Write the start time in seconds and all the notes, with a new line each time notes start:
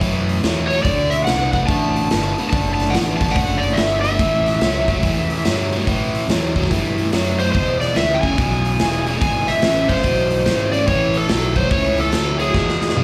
0.01 F#2 A2 E3, kick, open hi-hat
0.29 open hi-hat
0.43 E2 A2 F#3, snare, open hi-hat
0.67 A2 F#3 C#5, open hi-hat
0.83 D2 D3 A3 D5, kick, open hi-hat
1.10 E5, open hi-hat
1.24 C2 D3 B3 F#5, snare, open hi-hat
1.53 D3 B3 F#5, kick, open hi-hat
1.67 A1 D3 A3 A5, kick, open hi-hat
1.96 open hi-hat
2.11 G1 D3 B3, snare, open hi-hat
2.38 D3 B3, muted fingered electric bass stroke, open hi-hat
2.49 F#1 D3 A3 A5, kick, open hi-hat
2.75 A5
2.80 snare, open hi-hat
2.90 D3 B3 F#5
2.94 A1, snare, open hi-hat
3.17 D3 A5, kick, open hi-hat
3.21 B3
3.29 F#5, snare
3.35 F#1 D3 A3, kick, open hi-hat
3.58 D5
3.63 open hi-hat
3.73 D3 B3 E5
3.77 G1, snare, open hi-hat
4.01 D3 B3 E5, open hi-hat
4.19 A1 A2 E3, kick, open hi-hat
4.46 snare, open hi-hat
4.61 C#2 A2 F#3, snare, open hi-hat
4.88 A2 F#3, kick, open hi-hat
5.03 E2 A2 E3, kick, open hi-hat
5.30 open hi-hat
5.45 G2 A2 F#3, snare, open hi-hat
5.72 A2 F#3, open hi-hat
5.87 A2 E3, kick, open hi-hat
6.15 open hi-hat
6.29 E2 A2 F#3, snare, open hi-hat
6.56 A2 F#3, kick, open hi-hat
6.64 kick, snare
6.71 G2 A2 E3, kick, open hi-hat
6.98 open hi-hat
7.12 F#2 A2 F#3, snare, open hi-hat
7.39 A2 F#3 C5, open hi-hat
7.53 E2 B2 C5, kick, open hi-hat
7.81 D5, snare, open hi-hat
7.95 D2 E2 C#3 E5, snare, open hi-hat
8.14 G5
8.21 E2 C#3 G#5, kick, open hi-hat
8.37 B1 E2 B2, kick, open hi-hat
8.65 open hi-hat
8.79 E1 E2 C#3, snare, open hi-hat
9.06 E2 C#3, open hi-hat
9.20 G#1 E2 B2 G#5, kick, open hi-hat
9.48 E5, muted fingered electric bass stroke, snare, open hi-hat
9.62 A1 E2 C#3, snare, open hi-hat
9.89 E2 C#3 C5, kick, open hi-hat
9.97 snare
10.03 B1 E2 B2, kick, open hi-hat
10.31 open hi-hat
10.45 G#1 E2 C#3, snare, open hi-hat
10.72 E2 C#3 D5, open hi-hat
10.87 A1 A2 E3 C#5, kick, open hi-hat
11.14 A4, open hi-hat
11.28 B1 A2 F#3, snare, open hi-hat
11.55 A2 F#3 C5, kick, open hi-hat
11.71 C#2 A2 E3 C#5, kick, open hi-hat
11.98 A4, open hi-hat
12.12 D2 A2 F#3, snare, open hi-hat
12.39 A2 F#3 G#4, open hi-hat
12.54 E2 B2, kick, snare
12.69 snare
12.81 snare
12.89 snare
12.95 E2 F#2 C#3, high tom